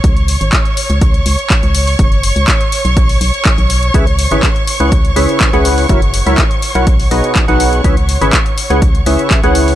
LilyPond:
<<
  \new Staff \with { instrumentName = "Violin section" } { \time 4/4 \key cis \minor \tempo 4 = 123 <cis'' cis'''>1~ | <cis'' cis'''>1~ | <cis'' cis'''>1~ | <cis'' cis'''>1~ |
<cis'' cis'''>1 | }
  \new Staff \with { instrumentName = "Synth stab" } { \time 4/4 \key cis \minor r1 | r1 | <cis e' gis' b' cis'' e''>16 r8 <cis e' gis' b' cis'' e''>16 r8. <cis e' gis' b' cis'' fis''>16 r8 <cis e' gis' b' cis'' e''>8. <cis e' gis' b' cis'' fis''>8. | <fis e' fis' ais' cis'' e''>16 r8 <fis e' fis' ais' cis'' e''>16 r8. <e' fis' ais' cis'' fis''>16 r8 <b, dis' fis' gis' b' dis''>8. <b, dis' fis' gis' b' fis''>8. |
<cis e' gis' b' cis'' e''>16 r8 <cis e' gis' b' cis'' e''>16 r8. <cis e' gis' b' cis'' fis''>16 r8 <cis e' gis' b' cis'' e''>8. <cis e' gis' b' cis'' fis''>8. | }
  \new Staff \with { instrumentName = "FM bass" } { \clef bass \time 4/4 \key cis \minor cis,8. gis,,16 r8. cis,8. cis,16 r8 cis,8. | fis,,8. cis,16 r8. b,,8. b,,16 r8 b,,8. | cis,8. gis,,16 r8. cis,8. cis,16 r8 cis,8. | fis,,8. cis,16 r8. b,,8. b,,16 r8 b,,8. |
cis,8. gis,,16 r8. cis,8. cis,16 r8 cis,8. | }
  \new DrumStaff \with { instrumentName = "Drums" } \drummode { \time 4/4 <hh bd>16 hh16 hho16 hh16 <hc hh bd>16 hh16 hho16 hh16 <hh bd>16 hh16 hho16 hh16 <hc hh bd>16 hh16 hho16 hho16 | <hh bd>16 hh16 hho16 hh16 <hc hh bd>16 hh16 hho16 hh16 <hh bd>16 hho16 hho16 hh16 <hc hh bd>16 hh16 hho16 hh16 | <hh bd>16 hh16 hho16 hh16 <hc hh bd>16 hh16 hho16 hh16 <hh bd>16 hh16 hho16 hh16 <hc hh bd>16 hh16 hho16 hho16 | <hh bd>16 hh16 hho16 hh16 <hc hh bd>16 hh16 hho16 hh16 <hh bd>16 hho16 hho16 hh16 <hc hh bd>16 hh16 hho16 hh16 |
<hh bd>16 hh16 hho16 hh16 <hc hh bd>16 hh16 hho16 hh16 <hh bd>16 hh16 hho16 hh16 <hc hh bd>16 hh16 hho16 hho16 | }
>>